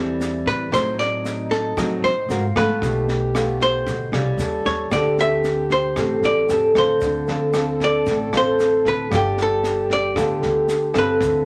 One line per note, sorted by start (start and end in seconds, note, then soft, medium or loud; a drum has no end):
0.00 0.42 E2 medium
0.00 0.69 E3 medium
0.00 0.67 G3 medium
0.00 0.68 C4 medium
0.00 0.68 E4 medium
0.00 0.73 E4 medium
0.00 0.50 A4 medium
0.20 snare soft
0.20 shaker medium
0.46 0.70 A2 medium
0.46 0.73 B4 medium
0.46 kick soft
0.46 snare soft
0.46 shaker soft
0.71 1.74 A2 medium
0.71 1.73 A2 medium
0.71 1.72 F#3 medium
0.71 1.73 C4 medium
0.71 1.73 D#4 medium
0.71 2.28 D#4 medium
0.71 0.99 C5 medium
0.71 kick medium
0.71 cross-stick medium
0.71 snare soft
0.71 shaker medium
0.99 1.53 D5 medium
0.99 snare soft
0.99 shaker soft
1.25 snare soft
1.25 shaker medium
1.51 2.05 A4 medium
1.51 kick soft
1.51 snare soft
1.51 shaker soft
1.77 2.27 A2 medium
1.77 2.01 A2 medium
1.77 2.11 F#3 medium
1.77 2.11 C4 medium
1.77 2.11 D#4 medium
1.77 kick medium
1.77 cross-stick medium
1.77 snare soft
1.77 shaker medium
2.03 2.28 A2 medium
2.03 2.57 C5 medium
2.03 snare soft
2.03 shaker soft
2.29 2.53 G#2 loud
2.29 2.45 C4 medium
2.29 2.83 F4 medium
2.29 2.45 F#4 medium
2.29 2.45 A#4 medium
2.29 snare soft
2.29 shaker medium
2.56 2.80 G#2 medium
2.56 3.04 A3 medium
2.56 3.04 B3 medium
2.56 3.04 F4 medium
2.56 3.62 B4 medium
2.56 kick soft
2.56 cross-stick medium
2.56 snare soft
2.56 shaker soft
2.81 3.83 B1 medium
2.81 3.84 B2 medium
2.81 4.12 G4 loud
2.81 kick medium
2.81 snare soft
2.81 shaker medium
3.09 snare soft
3.09 shaker soft
3.34 3.87 A3 medium
3.34 3.87 B3 medium
3.34 3.87 F4 medium
3.34 cross-stick medium
3.34 snare soft
3.34 shaker medium
3.60 4.66 C5 medium
3.60 kick soft
3.60 snare soft
3.60 shaker soft
3.86 4.11 D2 medium
3.86 4.37 B2 medium
3.86 kick medium
3.86 snare soft
3.86 shaker medium
4.12 4.37 C2 medium
4.12 4.88 G3 medium
4.12 4.88 C#4 medium
4.12 4.88 F4 medium
4.12 cross-stick medium
4.12 snare soft
4.12 shaker soft
4.37 4.63 D#2 medium
4.37 4.92 A4 loud
4.37 snare soft
4.37 shaker medium
4.65 4.90 D#2 medium
4.65 4.92 C#5 medium
4.65 kick soft
4.65 snare soft
4.65 shaker soft
4.91 5.92 D2 medium
4.91 5.94 D3 medium
4.91 5.62 C4 medium
4.91 6.75 G4 loud
4.91 5.63 G4 medium
4.91 5.63 A4 medium
4.91 5.17 D5 loud
4.91 kick medium
4.91 cross-stick medium
4.91 snare soft
4.91 shaker medium
5.18 5.68 E5 loud
5.18 snare soft
5.18 shaker soft
5.44 snare soft
5.44 shaker medium
5.70 6.25 C5 medium
5.70 kick soft
5.70 snare soft
5.70 shaker soft
5.96 6.21 A1 medium
5.96 6.99 A2 medium
5.96 6.45 C4 medium
5.96 6.45 G4 soft
5.96 6.45 A4 medium
5.96 kick medium
5.96 cross-stick medium
5.96 snare soft
5.96 shaker medium
6.22 6.47 A1 medium
6.22 6.78 D5 loud
6.22 snare soft
6.22 shaker soft
6.49 6.73 E2 medium
6.49 6.71 C4 medium
6.49 6.72 G4 medium
6.49 6.72 A4 medium
6.49 snare soft
6.49 shaker medium
6.75 6.99 D2 medium
6.75 7.27 C4 medium
6.75 7.27 F4 medium
6.75 7.27 A4 medium
6.75 7.51 C5 medium
6.75 kick soft
6.75 cross-stick medium
6.75 snare soft
6.75 shaker soft
7.01 8.02 D2 medium
7.01 8.04 D3 medium
7.01 9.12 A4 loud
7.01 kick medium
7.01 snare soft
7.01 shaker medium
7.27 7.50 C4 medium
7.27 7.50 F4 medium
7.27 7.50 A4 medium
7.27 snare soft
7.27 shaker soft
7.53 8.29 C4 medium
7.53 8.29 F4 medium
7.53 8.29 A4 medium
7.53 cross-stick medium
7.53 snare soft
7.53 shaker medium
7.80 8.36 D5 medium
7.80 kick soft
7.80 snare soft
7.80 shaker soft
8.06 8.31 A1 medium
8.06 9.08 A2 medium
8.06 kick medium
8.06 snare soft
8.06 shaker medium
8.33 8.81 A1 medium
8.33 9.07 C4 medium
8.33 9.07 F4 medium
8.33 9.08 A4 medium
8.33 cross-stick medium
8.33 snare soft
8.33 shaker soft
8.37 8.88 C5 loud
8.59 snare soft
8.59 shaker medium
8.85 9.09 D2 medium
8.85 9.13 B4 medium
8.85 kick soft
8.85 snare soft
8.85 shaker soft
9.10 10.12 G1 medium
9.10 10.13 G3 medium
9.10 10.12 B3 soft
9.10 10.12 F4 medium
9.10 11.20 G4 loud
9.10 10.12 A4 medium
9.10 kick medium
9.10 cross-stick medium
9.10 snare soft
9.10 shaker medium
9.15 9.40 G4 medium
9.37 snare soft
9.37 shaker soft
9.42 9.94 A4 medium
9.64 snare soft
9.64 shaker medium
9.90 10.98 D5 medium
9.90 kick soft
9.90 snare soft
9.90 shaker soft
10.15 10.40 D2 medium
10.15 11.18 D3 soft
10.15 10.68 B3 medium
10.15 10.68 F4 medium
10.15 10.68 A4 medium
10.15 kick medium
10.15 cross-stick medium
10.15 snare soft
10.15 shaker medium
10.42 10.91 D2 medium
10.42 snare soft
10.42 shaker soft
10.68 snare soft
10.68 shaker medium
10.94 11.19 G1 medium
10.94 11.42 C4 medium
10.94 11.43 F4 medium
10.94 11.43 A4 medium
10.94 kick soft
10.94 cross-stick medium
10.94 snare soft
10.94 shaker soft
10.98 11.45 B4 medium
11.20 11.45 D2 medium
11.20 11.45 D3 medium
11.20 11.45 E4 medium
11.20 kick medium
11.20 snare soft
11.20 shaker medium